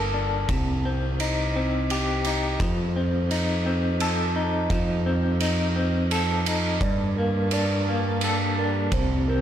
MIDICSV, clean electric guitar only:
0, 0, Header, 1, 2, 480
1, 0, Start_track
1, 0, Key_signature, -2, "minor"
1, 0, Tempo, 702576
1, 340, Time_signature, 3, 2, 24, 8
1, 6431, End_track
2, 0, Start_track
2, 0, Title_t, "Clean electric guitar"
2, 0, Program_c, 0, 27
2, 0, Note_on_c, 0, 43, 46
2, 0, Note_on_c, 0, 58, 42
2, 0, Note_on_c, 0, 62, 42
2, 0, Note_on_c, 0, 69, 50
2, 88, Note_off_c, 0, 62, 0
2, 96, Note_on_c, 0, 62, 43
2, 97, Note_off_c, 0, 43, 0
2, 337, Note_on_c, 0, 48, 46
2, 338, Note_off_c, 0, 58, 0
2, 338, Note_off_c, 0, 62, 0
2, 338, Note_off_c, 0, 69, 0
2, 583, Note_on_c, 0, 60, 41
2, 823, Note_on_c, 0, 63, 43
2, 1063, Note_off_c, 0, 60, 0
2, 1065, Note_on_c, 0, 60, 44
2, 1307, Note_on_c, 0, 67, 52
2, 1539, Note_off_c, 0, 48, 0
2, 1546, Note_off_c, 0, 63, 0
2, 1548, Note_on_c, 0, 63, 45
2, 1784, Note_off_c, 0, 67, 0
2, 1788, Note_on_c, 0, 53, 54
2, 1809, Note_off_c, 0, 63, 0
2, 2021, Note_off_c, 0, 60, 0
2, 2024, Note_on_c, 0, 60, 42
2, 2262, Note_on_c, 0, 63, 45
2, 2494, Note_off_c, 0, 60, 0
2, 2502, Note_on_c, 0, 60, 42
2, 2743, Note_on_c, 0, 69, 58
2, 2970, Note_off_c, 0, 63, 0
2, 2979, Note_on_c, 0, 63, 46
2, 2985, Note_off_c, 0, 53, 0
2, 3220, Note_on_c, 0, 53, 49
2, 3450, Note_off_c, 0, 60, 0
2, 3458, Note_on_c, 0, 60, 43
2, 3688, Note_off_c, 0, 63, 0
2, 3697, Note_on_c, 0, 63, 41
2, 3925, Note_off_c, 0, 60, 0
2, 3933, Note_on_c, 0, 60, 45
2, 4177, Note_off_c, 0, 69, 0
2, 4180, Note_on_c, 0, 69, 50
2, 4415, Note_off_c, 0, 63, 0
2, 4421, Note_off_c, 0, 53, 0
2, 4423, Note_on_c, 0, 63, 44
2, 4657, Note_off_c, 0, 60, 0
2, 4661, Note_off_c, 0, 69, 0
2, 4662, Note_off_c, 0, 63, 0
2, 4663, Note_on_c, 0, 43, 50
2, 4907, Note_on_c, 0, 58, 44
2, 5144, Note_on_c, 0, 62, 42
2, 5379, Note_off_c, 0, 58, 0
2, 5387, Note_on_c, 0, 58, 49
2, 5631, Note_on_c, 0, 69, 49
2, 5861, Note_off_c, 0, 62, 0
2, 5862, Note_off_c, 0, 43, 0
2, 5869, Note_on_c, 0, 62, 45
2, 6104, Note_off_c, 0, 58, 0
2, 6105, Note_off_c, 0, 62, 0
2, 6106, Note_off_c, 0, 69, 0
2, 6351, Note_on_c, 0, 60, 43
2, 6431, Note_off_c, 0, 60, 0
2, 6431, End_track
0, 0, End_of_file